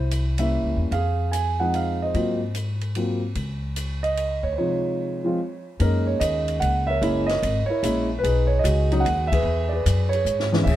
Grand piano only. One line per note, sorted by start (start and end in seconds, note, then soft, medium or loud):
0.00 0.35 E4 medium
0.39 0.90 G3 soft
0.39 0.90 A#3 soft
0.39 0.90 C#4 soft
0.39 0.91 E4 medium
0.39 0.76 E5 medium
0.92 1.57 G#4 medium
0.92 1.30 F5 medium
1.32 1.60 G#5 medium
1.60 2.12 F3 medium
1.60 2.12 G#3 medium
1.60 2.12 C4 soft
1.60 2.12 D#4 medium
1.60 1.74 F#5 medium
1.75 2.00 F5 medium
2.02 2.53 C5 medium
2.02 2.39 D#5 medium
2.14 2.39 F#3 medium
2.14 2.39 A#3 soft
2.14 2.39 C4 soft
2.14 2.39 F4 medium
2.96 3.20 F#3 medium
2.96 3.20 A#3 soft
2.96 3.21 C4 soft
2.96 3.21 F4 medium
4.03 4.45 D#5 medium
4.43 4.53 C#5 medium
4.53 4.58 C5 medium
4.58 5.21 C3 soft
4.58 5.20 F3 soft
4.58 5.21 G#3 soft
4.58 5.21 D#4 medium
4.58 5.24 F4 medium
4.58 5.62 C#5 medium
5.24 5.37 F3 medium
5.24 5.37 G#3 medium
5.24 5.37 C4 medium
5.24 5.38 F4 medium
5.80 6.93 G#3 medium
5.80 6.93 A#3 medium
5.80 6.94 C#4 medium
5.80 6.94 D#4 medium
5.80 6.06 A#4 medium
6.07 6.21 C#5 medium
6.20 6.85 A#4 medium
6.20 6.62 D#5 medium
6.60 6.88 F#5 medium
6.87 7.28 A#4 medium
6.87 7.39 C#5 medium
6.87 7.29 E5 loud
7.01 7.25 G#3 medium
7.01 7.26 A#3 medium
7.01 7.26 C#4 medium
7.01 7.26 E4 medium
7.27 7.69 A#4 medium
7.27 7.65 D#5 medium
7.66 7.83 E4 medium
7.66 8.05 C#5 medium
7.70 8.20 A#4 medium
7.83 8.07 G#3 medium
7.83 8.07 A#3 medium
7.83 8.07 C#4 medium
7.83 8.08 E4 medium
8.19 8.48 B4 medium
8.23 8.87 D#4 medium
8.23 8.63 G#4 medium
8.47 8.62 C#5 medium
8.59 9.03 D#5 medium
8.64 9.27 F#4 medium
8.64 9.27 G#4 medium
8.91 9.03 F#3 medium
8.91 9.03 G#3 medium
8.91 9.03 C#4 medium
8.91 9.04 D#4 medium
9.00 9.27 F#5 medium
9.27 9.71 E5 loud
9.32 9.72 G#4 medium
9.32 9.72 B4 medium
9.69 10.07 D5 medium
9.73 10.13 G#4 medium
9.73 10.22 B4 medium
10.09 10.48 C#5 medium
10.15 10.63 G#4 medium
10.52 10.64 E3 medium
10.52 10.65 G#3 medium
10.52 10.65 B3 medium
10.52 10.65 C#4 medium
10.64 10.76 E5 medium
10.69 10.76 G#4 medium
10.69 10.76 C#5 medium